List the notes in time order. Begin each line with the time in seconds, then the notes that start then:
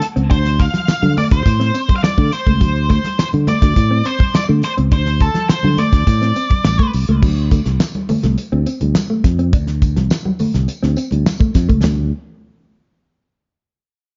0.02 muted clean electric guitar stroke, snare, closed hi-hat, muted conga
0.16 C#2 C4, closed hi-hat
0.30 D2 D4 C5, kick, closed hi-hat, muted conga
0.45 snare, closed hi-hat
0.59 F5, muted clean electric guitar stroke, kick, closed hi-hat, tambourine, muted conga
0.74 F3, snare, closed hi-hat, high conga
0.88 muted clean electric guitar stroke, muted fingered electric bass stroke, snare, tambourine, muted conga
1.02 D3 F#3, closed hi-hat, high conga
1.17 A3 D5, open hi-hat, tambourine, muted conga, low conga
1.31 D2 C5, kick, snare, closed hi-hat, low conga
1.46 A2, muted clean electric guitar stroke, kick, closed hi-hat, tambourine
1.60 C4, snare
1.74 C4, closed hi-hat, tambourine
1.89 kick, closed hi-hat, high conga
1.96 F5
2.03 D5, snare, tambourine, muted conga, high conga
2.18 D3 A3, kick, closed hi-hat
2.32 C5, muted clean electric guitar stroke, snare, closed hi-hat, tambourine
2.47 C#2 A3, kick, closed hi-hat
2.61 D2 F#3, kick, closed hi-hat, tambourine, muted conga
2.75 closed hi-hat
2.89 A3 C5, kick, closed hi-hat, tambourine, muted conga
3.04 muted clean electric guitar stroke, snare, closed hi-hat, high conga
3.18 C5, muted clean electric guitar stroke, muted fingered electric bass stroke, snare, tambourine, muted conga
3.33 D3, closed hi-hat, high conga
3.47 A3 D5, closed hi-hat, tambourine, muted conga, high conga, low conga
3.62 D2 A3, kick, snare, closed hi-hat, low conga
3.76 A2, muted clean electric guitar stroke, kick, closed hi-hat, tambourine
3.91 C4
4.04 C4 C5, closed hi-hat, tambourine, muted conga
4.19 kick, closed hi-hat, high conga
4.34 D5, snare, tambourine, high conga
4.49 D3 A3
4.62 C5, muted clean electric guitar stroke, snare, closed hi-hat, tambourine, muted conga
4.77 C#2 C4, closed hi-hat
4.91 D2 D4 C5, kick, closed hi-hat, tambourine, muted conga
5.06 snare, closed hi-hat
5.20 A4, muted clean electric guitar stroke, kick, closed hi-hat, tambourine, muted conga
5.34 F3, snare, closed hi-hat, high conga
5.49 C5, muted clean electric guitar stroke, muted fingered electric bass stroke, snare, tambourine
5.63 D3 F#3, closed hi-hat, high conga
5.77 A3 D5, closed hi-hat, tambourine, muted conga, low conga
5.92 D2, kick, snare, closed hi-hat, low conga
6.07 A2, muted clean electric guitar stroke, kick, closed hi-hat, tambourine, muted conga
6.21 C4, snare, closed hi-hat
6.34 C4, closed hi-hat, tambourine, muted conga
6.50 kick, closed hi-hat, high conga
6.64 A1, snare, tambourine, muted conga, high conga
6.79 A3, kick, closed hi-hat
6.93 C2, muted clean electric guitar stroke, open hi-hat, tambourine
7.08 C#2 A3, closed hi-hat
7.23 D2 F#3, kick, crash, tambourine
7.37 closed hi-hat
7.51 A3, kick, closed hi-hat, tambourine, muted conga
7.66 C2, muted clean electric guitar stroke, snare, closed hi-hat, high conga
7.80 muted clean electric guitar stroke, snare, closed hi-hat, tambourine, muted conga
7.95 closed hi-hat, high conga
8.09 A3, muted fingered electric bass stroke, open hi-hat, tambourine, muted conga, high conga, low conga
8.23 C2 A3, snare, closed hi-hat, low conga
8.38 muted clean electric guitar stroke, closed hi-hat, tambourine, muted conga
8.52 D2 C4
8.66 C4, closed hi-hat, tambourine
8.81 D2, closed hi-hat, high conga
8.95 snare, closed hi-hat, tambourine, muted conga, high conga
9.10 A3
9.24 F2, muted clean electric guitar stroke, kick, snare, closed hi-hat, muted conga
9.39 C4, closed hi-hat
9.53 D2 D4, kick, closed hi-hat, tambourine, muted conga
9.67 snare, closed hi-hat
9.82 muted clean electric guitar stroke, kick, closed hi-hat, tambourine, muted conga
9.96 C2 F3, snare, closed hi-hat, high conga
10.10 muted clean electric guitar stroke, snare, closed hi-hat, tambourine
10.25 F#3, high conga
10.39 A3, muted fingered electric bass stroke, open hi-hat, tambourine, muted conga, low conga
10.54 C2, snare, closed hi-hat, low conga
10.68 muted clean electric guitar stroke, closed hi-hat, tambourine, muted conga
10.83 D2 C4, snare
10.96 C4, closed hi-hat, tambourine
11.11 D2, closed hi-hat, high conga
11.26 snare, closed hi-hat, tambourine, high conga
11.40 A3, kick
11.54 F2, muted clean electric guitar stroke, kick, snare, closed hi-hat, tambourine, muted conga
11.69 C#2 A3, kick, closed hi-hat
11.83 D2 A3, snare, floor tom, tambourine, high conga